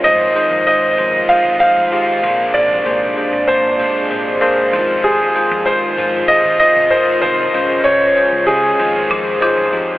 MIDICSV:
0, 0, Header, 1, 8, 480
1, 0, Start_track
1, 0, Key_signature, -4, "minor"
1, 0, Tempo, 625000
1, 34, Time_signature, 4, 2, 24, 8
1, 7665, End_track
2, 0, Start_track
2, 0, Title_t, "Grand piano"
2, 0, Program_c, 0, 0
2, 31, Note_on_c, 0, 75, 99
2, 501, Note_off_c, 0, 75, 0
2, 512, Note_on_c, 0, 75, 95
2, 989, Note_on_c, 0, 77, 103
2, 1007, Note_off_c, 0, 75, 0
2, 1217, Note_off_c, 0, 77, 0
2, 1229, Note_on_c, 0, 77, 106
2, 1920, Note_off_c, 0, 77, 0
2, 1949, Note_on_c, 0, 74, 101
2, 2641, Note_off_c, 0, 74, 0
2, 2669, Note_on_c, 0, 72, 98
2, 3600, Note_off_c, 0, 72, 0
2, 3870, Note_on_c, 0, 68, 92
2, 4344, Note_on_c, 0, 72, 98
2, 4366, Note_off_c, 0, 68, 0
2, 4798, Note_off_c, 0, 72, 0
2, 4824, Note_on_c, 0, 75, 104
2, 5054, Note_off_c, 0, 75, 0
2, 5065, Note_on_c, 0, 75, 106
2, 5303, Note_on_c, 0, 72, 98
2, 5317, Note_off_c, 0, 75, 0
2, 5530, Note_off_c, 0, 72, 0
2, 5541, Note_on_c, 0, 72, 105
2, 5997, Note_off_c, 0, 72, 0
2, 6020, Note_on_c, 0, 73, 109
2, 6476, Note_off_c, 0, 73, 0
2, 6502, Note_on_c, 0, 68, 98
2, 7437, Note_off_c, 0, 68, 0
2, 7665, End_track
3, 0, Start_track
3, 0, Title_t, "Marimba"
3, 0, Program_c, 1, 12
3, 6994, Note_on_c, 1, 65, 96
3, 7226, Note_off_c, 1, 65, 0
3, 7235, Note_on_c, 1, 65, 102
3, 7665, Note_off_c, 1, 65, 0
3, 7665, End_track
4, 0, Start_track
4, 0, Title_t, "Tine electric piano"
4, 0, Program_c, 2, 4
4, 0, Control_c, 2, 64, 127
4, 30, Note_on_c, 2, 56, 92
4, 31, Note_on_c, 2, 63, 89
4, 35, Note_on_c, 2, 65, 87
4, 38, Note_on_c, 2, 72, 104
4, 45, Control_c, 2, 64, 0
4, 188, Control_c, 2, 64, 127
4, 216, Note_off_c, 2, 56, 0
4, 216, Note_off_c, 2, 63, 0
4, 218, Note_off_c, 2, 65, 0
4, 220, Note_off_c, 2, 72, 0
4, 269, Note_on_c, 2, 56, 94
4, 273, Note_on_c, 2, 63, 85
4, 276, Note_on_c, 2, 65, 84
4, 279, Note_on_c, 2, 72, 103
4, 455, Note_off_c, 2, 56, 0
4, 457, Note_off_c, 2, 63, 0
4, 459, Note_off_c, 2, 65, 0
4, 460, Note_off_c, 2, 72, 0
4, 510, Note_on_c, 2, 56, 76
4, 512, Note_on_c, 2, 63, 70
4, 516, Note_on_c, 2, 65, 68
4, 519, Note_on_c, 2, 72, 81
4, 696, Note_off_c, 2, 56, 0
4, 697, Note_off_c, 2, 63, 0
4, 699, Note_off_c, 2, 65, 0
4, 700, Note_off_c, 2, 72, 0
4, 751, Note_on_c, 2, 56, 71
4, 754, Note_on_c, 2, 63, 67
4, 757, Note_on_c, 2, 65, 65
4, 761, Note_on_c, 2, 72, 80
4, 936, Note_off_c, 2, 56, 0
4, 938, Note_off_c, 2, 63, 0
4, 939, Note_off_c, 2, 65, 0
4, 941, Note_off_c, 2, 72, 0
4, 988, Note_on_c, 2, 56, 77
4, 992, Note_on_c, 2, 63, 71
4, 996, Note_on_c, 2, 65, 71
4, 998, Note_on_c, 2, 72, 86
4, 1175, Note_off_c, 2, 56, 0
4, 1177, Note_off_c, 2, 63, 0
4, 1179, Note_off_c, 2, 65, 0
4, 1180, Note_off_c, 2, 72, 0
4, 1227, Note_on_c, 2, 56, 77
4, 1231, Note_on_c, 2, 63, 70
4, 1234, Note_on_c, 2, 65, 70
4, 1237, Note_on_c, 2, 72, 86
4, 1414, Note_off_c, 2, 56, 0
4, 1416, Note_off_c, 2, 63, 0
4, 1418, Note_off_c, 2, 65, 0
4, 1419, Note_off_c, 2, 72, 0
4, 1468, Note_on_c, 2, 56, 103
4, 1471, Note_on_c, 2, 63, 92
4, 1475, Note_on_c, 2, 65, 92
4, 1478, Note_on_c, 2, 67, 112
4, 1655, Note_off_c, 2, 56, 0
4, 1656, Note_off_c, 2, 63, 0
4, 1658, Note_off_c, 2, 65, 0
4, 1660, Note_off_c, 2, 67, 0
4, 1709, Note_on_c, 2, 58, 77
4, 1712, Note_on_c, 2, 62, 71
4, 1714, Note_on_c, 2, 46, 66
4, 1715, Note_on_c, 2, 68, 70
4, 1718, Note_on_c, 2, 72, 86
4, 1722, Control_c, 2, 64, 0
4, 1863, Control_c, 2, 64, 127
4, 2095, Note_off_c, 2, 58, 0
4, 2097, Note_off_c, 2, 62, 0
4, 2098, Note_off_c, 2, 68, 0
4, 2100, Note_off_c, 2, 72, 0
4, 2188, Note_on_c, 2, 58, 97
4, 2192, Note_on_c, 2, 62, 90
4, 2195, Note_on_c, 2, 68, 91
4, 2199, Note_on_c, 2, 72, 108
4, 2375, Note_off_c, 2, 58, 0
4, 2377, Note_off_c, 2, 62, 0
4, 2378, Note_off_c, 2, 68, 0
4, 2380, Note_off_c, 2, 72, 0
4, 2403, Note_off_c, 2, 46, 0
4, 2430, Note_on_c, 2, 58, 76
4, 2433, Note_on_c, 2, 62, 69
4, 2436, Note_on_c, 2, 68, 66
4, 2438, Note_on_c, 2, 72, 82
4, 2616, Note_off_c, 2, 58, 0
4, 2617, Note_off_c, 2, 62, 0
4, 2619, Note_off_c, 2, 68, 0
4, 2620, Note_off_c, 2, 72, 0
4, 2667, Note_on_c, 2, 58, 75
4, 2671, Note_on_c, 2, 62, 64
4, 2673, Note_on_c, 2, 68, 69
4, 2676, Note_on_c, 2, 72, 80
4, 2854, Note_off_c, 2, 58, 0
4, 2856, Note_off_c, 2, 62, 0
4, 2857, Note_off_c, 2, 68, 0
4, 2859, Note_off_c, 2, 72, 0
4, 2906, Note_on_c, 2, 58, 73
4, 2909, Note_on_c, 2, 62, 70
4, 2913, Note_on_c, 2, 68, 70
4, 2915, Note_on_c, 2, 72, 86
4, 3094, Note_off_c, 2, 58, 0
4, 3095, Note_off_c, 2, 62, 0
4, 3097, Note_off_c, 2, 68, 0
4, 3098, Note_off_c, 2, 72, 0
4, 3145, Note_on_c, 2, 58, 77
4, 3148, Note_on_c, 2, 62, 67
4, 3151, Note_on_c, 2, 68, 70
4, 3155, Note_on_c, 2, 72, 84
4, 3334, Note_off_c, 2, 58, 0
4, 3335, Note_off_c, 2, 62, 0
4, 3336, Note_off_c, 2, 68, 0
4, 3338, Note_off_c, 2, 72, 0
4, 3385, Note_on_c, 2, 58, 127
4, 3387, Note_on_c, 2, 62, 106
4, 3390, Note_on_c, 2, 68, 109
4, 3395, Note_on_c, 2, 72, 127
4, 3573, Note_off_c, 2, 58, 0
4, 3575, Note_off_c, 2, 62, 0
4, 3576, Note_off_c, 2, 68, 0
4, 3578, Note_off_c, 2, 72, 0
4, 3626, Note_on_c, 2, 56, 94
4, 3629, Note_on_c, 2, 63, 87
4, 3632, Note_on_c, 2, 65, 88
4, 3634, Note_on_c, 2, 72, 101
4, 3643, Control_c, 2, 64, 0
4, 3775, Control_c, 2, 64, 127
4, 4014, Note_off_c, 2, 56, 0
4, 4015, Note_off_c, 2, 63, 0
4, 4017, Note_off_c, 2, 65, 0
4, 4018, Note_off_c, 2, 72, 0
4, 4104, Note_on_c, 2, 56, 93
4, 4109, Note_on_c, 2, 63, 90
4, 4112, Note_on_c, 2, 65, 85
4, 4114, Note_on_c, 2, 72, 106
4, 4293, Note_off_c, 2, 56, 0
4, 4295, Note_off_c, 2, 63, 0
4, 4297, Note_off_c, 2, 65, 0
4, 4298, Note_off_c, 2, 72, 0
4, 4345, Note_on_c, 2, 56, 74
4, 4348, Note_on_c, 2, 63, 72
4, 4350, Note_on_c, 2, 65, 68
4, 4355, Note_on_c, 2, 72, 86
4, 4533, Note_off_c, 2, 56, 0
4, 4535, Note_off_c, 2, 63, 0
4, 4536, Note_off_c, 2, 65, 0
4, 4538, Note_off_c, 2, 72, 0
4, 4588, Note_on_c, 2, 56, 74
4, 4591, Note_on_c, 2, 63, 66
4, 4594, Note_on_c, 2, 65, 65
4, 4597, Note_on_c, 2, 72, 82
4, 4775, Note_off_c, 2, 56, 0
4, 4776, Note_off_c, 2, 63, 0
4, 4778, Note_off_c, 2, 65, 0
4, 4779, Note_off_c, 2, 72, 0
4, 4826, Note_on_c, 2, 56, 76
4, 4830, Note_on_c, 2, 63, 70
4, 4832, Note_on_c, 2, 65, 73
4, 4836, Note_on_c, 2, 68, 89
4, 5014, Note_off_c, 2, 56, 0
4, 5016, Note_off_c, 2, 63, 0
4, 5017, Note_off_c, 2, 65, 0
4, 5019, Note_off_c, 2, 68, 0
4, 5065, Note_on_c, 2, 56, 75
4, 5067, Note_on_c, 2, 63, 69
4, 5070, Note_on_c, 2, 65, 68
4, 5074, Note_on_c, 2, 72, 84
4, 5253, Note_off_c, 2, 56, 0
4, 5254, Note_off_c, 2, 63, 0
4, 5256, Note_off_c, 2, 65, 0
4, 5258, Note_off_c, 2, 72, 0
4, 5306, Note_on_c, 2, 56, 100
4, 5308, Note_on_c, 2, 63, 92
4, 5311, Note_on_c, 2, 65, 89
4, 5315, Note_on_c, 2, 70, 109
4, 5494, Note_off_c, 2, 56, 0
4, 5495, Note_off_c, 2, 63, 0
4, 5496, Note_off_c, 2, 65, 0
4, 5498, Note_off_c, 2, 70, 0
4, 5546, Note_on_c, 2, 56, 73
4, 5549, Note_on_c, 2, 63, 68
4, 5553, Note_on_c, 2, 65, 66
4, 5555, Note_on_c, 2, 72, 81
4, 5734, Note_off_c, 2, 56, 0
4, 5735, Note_off_c, 2, 63, 0
4, 5737, Note_off_c, 2, 65, 0
4, 5738, Note_off_c, 2, 72, 0
4, 5786, Note_on_c, 2, 56, 96
4, 5789, Note_on_c, 2, 61, 86
4, 5791, Note_on_c, 2, 49, 65
4, 5792, Note_on_c, 2, 65, 90
4, 5795, Note_on_c, 2, 72, 109
4, 5803, Control_c, 2, 64, 0
4, 5927, Control_c, 2, 64, 127
4, 5974, Note_off_c, 2, 56, 0
4, 5975, Note_off_c, 2, 61, 0
4, 5977, Note_off_c, 2, 65, 0
4, 5978, Note_off_c, 2, 72, 0
4, 6024, Note_on_c, 2, 56, 96
4, 6028, Note_on_c, 2, 61, 87
4, 6030, Note_on_c, 2, 65, 85
4, 6034, Note_on_c, 2, 72, 100
4, 6213, Note_off_c, 2, 56, 0
4, 6215, Note_off_c, 2, 61, 0
4, 6216, Note_off_c, 2, 65, 0
4, 6218, Note_off_c, 2, 72, 0
4, 6264, Note_on_c, 2, 56, 75
4, 6266, Note_on_c, 2, 61, 72
4, 6270, Note_on_c, 2, 65, 64
4, 6273, Note_on_c, 2, 72, 85
4, 6453, Note_off_c, 2, 56, 0
4, 6454, Note_off_c, 2, 61, 0
4, 6456, Note_off_c, 2, 65, 0
4, 6457, Note_off_c, 2, 72, 0
4, 6481, Note_off_c, 2, 49, 0
4, 6507, Note_on_c, 2, 56, 73
4, 6509, Note_on_c, 2, 61, 63
4, 6512, Note_on_c, 2, 65, 64
4, 6517, Note_on_c, 2, 72, 80
4, 6694, Note_off_c, 2, 56, 0
4, 6695, Note_off_c, 2, 61, 0
4, 6697, Note_off_c, 2, 65, 0
4, 6699, Note_off_c, 2, 72, 0
4, 6746, Note_on_c, 2, 56, 76
4, 6749, Note_on_c, 2, 63, 70
4, 6752, Note_on_c, 2, 65, 68
4, 6756, Note_on_c, 2, 72, 84
4, 6763, Control_c, 2, 64, 0
4, 6910, Control_c, 2, 64, 127
4, 6934, Note_off_c, 2, 56, 0
4, 6935, Note_off_c, 2, 63, 0
4, 6937, Note_off_c, 2, 65, 0
4, 6939, Note_off_c, 2, 72, 0
4, 6985, Note_on_c, 2, 56, 74
4, 6989, Note_on_c, 2, 63, 69
4, 6991, Note_on_c, 2, 65, 65
4, 6994, Note_on_c, 2, 72, 82
4, 7173, Note_off_c, 2, 56, 0
4, 7175, Note_off_c, 2, 63, 0
4, 7176, Note_off_c, 2, 65, 0
4, 7178, Note_off_c, 2, 72, 0
4, 7225, Note_on_c, 2, 56, 118
4, 7228, Note_on_c, 2, 63, 107
4, 7230, Note_on_c, 2, 65, 105
4, 7235, Note_on_c, 2, 72, 127
4, 7413, Note_off_c, 2, 56, 0
4, 7415, Note_off_c, 2, 63, 0
4, 7416, Note_off_c, 2, 65, 0
4, 7418, Note_off_c, 2, 72, 0
4, 7465, Note_on_c, 2, 56, 83
4, 7469, Note_on_c, 2, 63, 80
4, 7471, Note_on_c, 2, 65, 79
4, 7475, Note_on_c, 2, 67, 96
4, 7653, Note_off_c, 2, 56, 0
4, 7655, Note_off_c, 2, 63, 0
4, 7656, Note_off_c, 2, 65, 0
4, 7658, Note_off_c, 2, 67, 0
4, 7665, End_track
5, 0, Start_track
5, 0, Title_t, "Distorted electric guitar"
5, 0, Program_c, 3, 30
5, 22, Note_on_c, 3, 53, 78
5, 39, Note_on_c, 3, 60, 78
5, 55, Note_on_c, 3, 65, 83
5, 985, Note_off_c, 3, 53, 0
5, 988, Note_on_c, 3, 53, 80
5, 994, Note_off_c, 3, 60, 0
5, 997, Note_on_c, 3, 60, 86
5, 1000, Note_off_c, 3, 65, 0
5, 1003, Note_on_c, 3, 65, 92
5, 1464, Note_off_c, 3, 53, 0
5, 1467, Note_on_c, 3, 53, 57
5, 1477, Note_off_c, 3, 60, 0
5, 1480, Note_on_c, 3, 60, 62
5, 1488, Note_off_c, 3, 65, 0
5, 1491, Note_on_c, 3, 65, 61
5, 1701, Note_off_c, 3, 60, 0
5, 1704, Note_on_c, 3, 58, 67
5, 1710, Note_off_c, 3, 53, 0
5, 1721, Note_on_c, 3, 53, 57
5, 1723, Note_off_c, 3, 65, 0
5, 1738, Note_on_c, 3, 46, 50
5, 2899, Note_off_c, 3, 46, 0
5, 2909, Note_off_c, 3, 58, 0
5, 2909, Note_on_c, 3, 46, 78
5, 2914, Note_off_c, 3, 53, 0
5, 2917, Note_on_c, 3, 53, 87
5, 2923, Note_on_c, 3, 58, 85
5, 3379, Note_off_c, 3, 46, 0
5, 3388, Note_on_c, 3, 46, 65
5, 3397, Note_off_c, 3, 53, 0
5, 3398, Note_off_c, 3, 58, 0
5, 3401, Note_on_c, 3, 53, 72
5, 3408, Note_on_c, 3, 58, 69
5, 3625, Note_on_c, 3, 65, 76
5, 3631, Note_off_c, 3, 46, 0
5, 3637, Note_off_c, 3, 53, 0
5, 3640, Note_off_c, 3, 58, 0
5, 3644, Note_on_c, 3, 60, 72
5, 3659, Note_on_c, 3, 53, 59
5, 4583, Note_off_c, 3, 65, 0
5, 4586, Note_on_c, 3, 65, 55
5, 4605, Note_off_c, 3, 60, 0
5, 4608, Note_on_c, 3, 60, 46
5, 4829, Note_off_c, 3, 53, 0
5, 4830, Note_off_c, 3, 65, 0
5, 4831, Note_off_c, 3, 60, 0
5, 4832, Note_on_c, 3, 53, 77
5, 4840, Note_on_c, 3, 60, 79
5, 4846, Note_on_c, 3, 65, 91
5, 5306, Note_off_c, 3, 53, 0
5, 5309, Note_on_c, 3, 53, 62
5, 5318, Note_off_c, 3, 60, 0
5, 5321, Note_on_c, 3, 60, 55
5, 5328, Note_off_c, 3, 65, 0
5, 5331, Note_on_c, 3, 65, 67
5, 5792, Note_on_c, 3, 49, 81
5, 5797, Note_off_c, 3, 53, 0
5, 5800, Note_on_c, 3, 56, 82
5, 5803, Note_off_c, 3, 60, 0
5, 5806, Note_on_c, 3, 61, 88
5, 6503, Note_off_c, 3, 61, 0
5, 6512, Note_on_c, 3, 61, 52
5, 6513, Note_off_c, 3, 49, 0
5, 6530, Note_off_c, 3, 56, 0
5, 6533, Note_on_c, 3, 56, 41
5, 6747, Note_off_c, 3, 56, 0
5, 6750, Note_on_c, 3, 53, 79
5, 6753, Note_off_c, 3, 61, 0
5, 6768, Note_on_c, 3, 60, 82
5, 6780, Note_off_c, 3, 65, 0
5, 6783, Note_on_c, 3, 65, 89
5, 7665, Note_off_c, 3, 53, 0
5, 7665, Note_off_c, 3, 60, 0
5, 7665, Note_off_c, 3, 65, 0
5, 7665, End_track
6, 0, Start_track
6, 0, Title_t, "Analog synth pad"
6, 0, Program_c, 4, 89
6, 0, Note_on_c, 4, 65, 90
6, 31, Note_on_c, 4, 56, 79
6, 32, Note_on_c, 4, 51, 86
6, 1682, Note_off_c, 4, 65, 0
6, 1696, Note_off_c, 4, 51, 0
6, 1715, Note_on_c, 4, 62, 90
6, 1716, Note_on_c, 4, 48, 88
6, 3615, Note_off_c, 4, 48, 0
6, 3615, Note_off_c, 4, 62, 0
6, 3632, Note_on_c, 4, 51, 81
6, 3633, Note_on_c, 4, 65, 93
6, 5761, Note_off_c, 4, 56, 0
6, 5771, Note_off_c, 4, 51, 0
6, 5790, Note_on_c, 4, 61, 74
6, 5792, Note_on_c, 4, 49, 82
6, 6742, Note_off_c, 4, 61, 0
6, 6743, Note_off_c, 4, 49, 0
6, 6750, Note_on_c, 4, 51, 81
6, 6750, Note_on_c, 4, 56, 75
6, 7665, Note_off_c, 4, 51, 0
6, 7665, Note_off_c, 4, 56, 0
6, 7665, Note_off_c, 4, 65, 0
6, 7665, End_track
7, 0, Start_track
7, 0, Title_t, "Fretless electric bass"
7, 0, Program_c, 5, 35
7, 30, Note_on_c, 5, 29, 99
7, 211, Note_off_c, 5, 29, 0
7, 391, Note_on_c, 5, 41, 103
7, 482, Note_off_c, 5, 41, 0
7, 752, Note_on_c, 5, 29, 93
7, 933, Note_off_c, 5, 29, 0
7, 1111, Note_on_c, 5, 32, 87
7, 1202, Note_off_c, 5, 32, 0
7, 1352, Note_on_c, 5, 29, 86
7, 1443, Note_off_c, 5, 29, 0
7, 1714, Note_on_c, 5, 34, 92
7, 1894, Note_off_c, 5, 34, 0
7, 1954, Note_on_c, 5, 34, 110
7, 2134, Note_off_c, 5, 34, 0
7, 2193, Note_on_c, 5, 34, 91
7, 2373, Note_off_c, 5, 34, 0
7, 2553, Note_on_c, 5, 34, 96
7, 2643, Note_off_c, 5, 34, 0
7, 2673, Note_on_c, 5, 46, 101
7, 2943, Note_off_c, 5, 46, 0
7, 3153, Note_on_c, 5, 34, 82
7, 3334, Note_off_c, 5, 34, 0
7, 3634, Note_on_c, 5, 29, 97
7, 3994, Note_off_c, 5, 29, 0
7, 4233, Note_on_c, 5, 41, 104
7, 4323, Note_off_c, 5, 41, 0
7, 4593, Note_on_c, 5, 44, 93
7, 4773, Note_off_c, 5, 44, 0
7, 4952, Note_on_c, 5, 32, 84
7, 5042, Note_off_c, 5, 32, 0
7, 5192, Note_on_c, 5, 36, 78
7, 5282, Note_off_c, 5, 36, 0
7, 5552, Note_on_c, 5, 36, 87
7, 5733, Note_off_c, 5, 36, 0
7, 5792, Note_on_c, 5, 37, 110
7, 5973, Note_off_c, 5, 37, 0
7, 6032, Note_on_c, 5, 37, 94
7, 6213, Note_off_c, 5, 37, 0
7, 6391, Note_on_c, 5, 37, 90
7, 6482, Note_off_c, 5, 37, 0
7, 6512, Note_on_c, 5, 49, 94
7, 6692, Note_off_c, 5, 49, 0
7, 6751, Note_on_c, 5, 29, 99
7, 6932, Note_off_c, 5, 29, 0
7, 6991, Note_on_c, 5, 41, 82
7, 7172, Note_off_c, 5, 41, 0
7, 7352, Note_on_c, 5, 29, 93
7, 7442, Note_off_c, 5, 29, 0
7, 7470, Note_on_c, 5, 41, 96
7, 7652, Note_off_c, 5, 41, 0
7, 7665, End_track
8, 0, Start_track
8, 0, Title_t, "Muted fretless electric bass strokes"
8, 7233, Note_on_c, 9, 29, 47
8, 7309, Note_off_c, 9, 29, 0
8, 7665, End_track
0, 0, End_of_file